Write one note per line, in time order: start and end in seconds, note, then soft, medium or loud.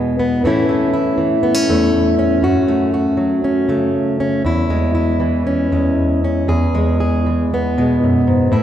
0.00 0.45 E2 medium
0.00 0.41 B2 soft
0.00 0.42 E3 soft
0.00 0.42 G#3 soft
0.00 0.18 B3 soft
0.00 0.41 G#4 soft
0.19 0.44 B3 soft
0.44 2.44 A2 medium
0.44 1.17 E3 soft
0.44 0.68 A3 soft
0.44 1.43 C#4 soft
0.44 0.92 E4 medium
0.69 1.68 A3 soft
0.93 2.43 E4 soft
1.18 2.40 E3 soft
1.43 1.55 B3 medium
1.55 2.18 C#4 soft
1.69 2.42 E2 medium
1.69 2.41 A3 soft
2.19 3.44 C#4 medium
2.42 4.41 F#2 medium
2.42 2.93 F#4 medium
2.68 3.68 A3 soft
2.94 4.42 F#4 soft
3.17 4.41 F#3 soft
3.44 4.19 C#4 soft
3.68 4.41 C#3 soft
3.68 4.42 A3 soft
4.20 4.42 C#4 soft
4.45 5.71 E2 medium
4.45 4.94 E4 medium
4.70 5.71 G#3 soft
4.95 6.48 E4 soft
5.20 7.26 E3 soft
5.47 6.23 C#4 soft
5.72 6.47 E2 soft
5.72 6.47 G#3 soft
6.24 6.47 C#4 soft
6.48 8.02 E2 medium
6.48 6.99 G#4 medium
6.75 7.77 G#3 soft
7.00 8.49 G#4 soft
7.26 8.49 E3 soft
7.54 8.53 B3 soft
7.78 8.50 B2 soft
7.78 8.50 G#3 soft
8.04 8.27 F#2 soft
8.27 8.52 G#2 medium
8.52 8.63 A2 medium
8.52 8.63 E4 medium